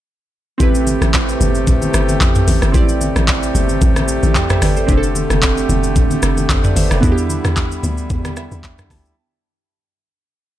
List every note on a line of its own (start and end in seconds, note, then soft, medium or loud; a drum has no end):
0.58 0.97 A1 loud
0.58 4.85 C3 medium
0.58 4.85 A3 medium
0.58 2.69 C4 medium
0.58 2.70 E4 medium
0.58 6.99 G4 medium
0.58 2.71 G4 medium
0.58 kick loud
0.58 low conga medium
0.58 shaker medium
0.63 2.72 B4 medium
0.75 shaker medium
0.87 high conga medium
0.87 shaker medium
1.02 1.36 A1 medium
1.02 cross-stick medium
1.02 high conga medium
1.02 shaker medium
1.14 kick medium
1.14 clap loud
1.14 shaker medium
1.29 shaker soft
1.40 1.89 G1 loud
1.40 high conga medium
1.40 low conga medium
1.40 shaker medium
1.55 high conga soft
1.55 shaker soft
1.67 kick loud
1.67 low conga medium
1.67 shaker medium
1.82 high conga medium
1.82 shaker medium
1.94 2.18 G1 medium
1.94 cross-stick loud
1.94 shaker loud
2.09 high conga medium
2.09 shaker medium
2.21 2.45 A1 loud
2.21 kick medium
2.21 clap loud
2.21 mid tom medium
2.21 shaker medium
2.35 mid tom loud
2.35 shaker soft
2.48 2.61 A1 loud
2.48 open hi-hat medium
2.48 high conga medium
2.48 shaker medium
2.62 2.73 G1 loud
2.62 cross-stick medium
2.62 shaker soft
2.72 3.12 A1 loud
2.72 4.84 C4 medium
2.72 4.84 E4 medium
2.72 4.85 G4 medium
2.72 kick loud
2.72 low conga medium
2.72 shaker medium
2.77 4.33 D5 medium
2.89 shaker medium
3.01 high conga medium
3.01 shaker medium
3.16 3.51 A1 loud
3.16 cross-stick loud
3.16 high conga medium
3.16 shaker soft
3.28 kick medium
3.28 clap loud
3.28 shaker medium
3.43 shaker soft
3.55 3.79 G1 medium
3.55 high conga medium
3.55 low conga medium
3.55 shaker medium
3.69 high conga medium
3.69 shaker soft
3.81 4.19 A1 loud
3.81 kick loud
3.81 low conga medium
3.81 shaker medium
3.96 cross-stick loud
3.96 high conga medium
3.96 shaker medium
4.08 shaker loud
4.23 4.58 A1 loud
4.23 high conga medium
4.23 shaker medium
4.35 4.49 E5 medium
4.35 4.49 G5 medium
4.35 kick medium
4.35 clap medium
4.35 mid tom medium
4.35 shaker medium
4.50 4.62 C5 medium
4.50 4.61 E5 medium
4.50 cross-stick loud
4.50 mid tom loud
4.50 shaker soft
4.62 4.86 G1 medium
4.62 4.76 B4 medium
4.62 4.76 D5 medium
4.62 cross-stick loud
4.62 open hi-hat medium
4.62 high conga medium
4.62 shaker loud
4.77 4.96 A4 medium
4.77 5.02 C5 medium
4.77 shaker soft
4.86 5.26 F1 loud
4.86 9.13 D3 medium
4.86 7.01 A3 medium
4.86 6.98 C4 medium
4.86 6.99 D4 medium
4.86 6.99 G4 medium
4.86 kick loud
4.86 low conga medium
4.86 shaker medium
4.91 4.97 G#4 medium
4.97 6.49 A4 medium
5.03 shaker medium
5.15 high conga medium
5.15 shaker medium
5.30 5.65 F1 medium
5.30 cross-stick medium
5.30 high conga medium
5.30 shaker medium
5.42 kick loud
5.42 clap loud
5.42 shaker medium
5.57 shaker soft
5.69 6.17 F1 loud
5.69 high conga medium
5.69 low conga medium
5.69 shaker loud
5.83 high conga soft
5.83 shaker soft
5.96 kick loud
5.96 low conga medium
5.96 shaker medium
6.11 high conga medium
6.11 shaker medium
6.23 6.47 F1 medium
6.23 cross-stick loud
6.23 shaker loud
6.37 high conga medium
6.37 shaker medium
6.49 6.73 G1 medium
6.49 6.64 A4 medium
6.49 6.63 C5 medium
6.49 kick loud
6.49 clap loud
6.49 mid tom medium
6.49 shaker medium
6.64 6.76 B4 medium
6.64 6.76 D5 medium
6.64 mid tom loud
6.64 shaker soft
6.76 6.89 G1 medium
6.76 6.91 C5 medium
6.76 6.90 E5 medium
6.76 open hi-hat medium
6.76 high conga medium
6.76 shaker medium
6.91 7.02 F1 loud
6.91 7.17 D5 medium
6.91 7.16 F5 medium
6.91 cross-stick loud
6.91 shaker soft
7.01 7.40 E2 loud
7.01 9.15 G3 medium
7.01 9.12 B3 medium
7.01 9.13 D4 medium
7.01 9.15 E4 medium
7.01 9.14 E4 medium
7.01 kick loud
7.01 low conga medium
7.01 shaker medium
7.05 7.11 F#4 medium
7.12 9.18 G4 medium
7.18 shaker medium
7.30 high conga medium
7.30 shaker medium
7.44 7.79 E2 medium
7.44 cross-stick loud
7.44 high conga medium
7.44 shaker soft
7.57 kick loud
7.57 clap loud
7.57 shaker medium
7.72 shaker soft
7.83 8.08 D2 medium
7.83 high conga medium
7.83 low conga medium
7.83 shaker medium
7.98 high conga soft
7.98 shaker soft
8.10 8.47 E2 loud
8.10 kick loud
8.10 low conga medium
8.10 shaker medium
8.25 cross-stick loud
8.25 high conga medium
8.25 shaker medium
8.37 8.62 E5 medium
8.37 cross-stick loud
8.37 shaker medium
8.52 8.87 E2 loud
8.52 high conga medium
8.52 shaker medium
8.64 8.89 G5 medium
8.64 kick medium
8.64 clap loud
8.64 shaker medium
8.78 cross-stick loud
8.78 mid tom medium
8.78 shaker soft
8.90 9.14 D2 medium
8.90 9.16 A5 medium
8.90 kick medium
8.90 cross-stick loud
8.90 open hi-hat medium
8.90 high conga medium
8.90 shaker medium
9.05 shaker soft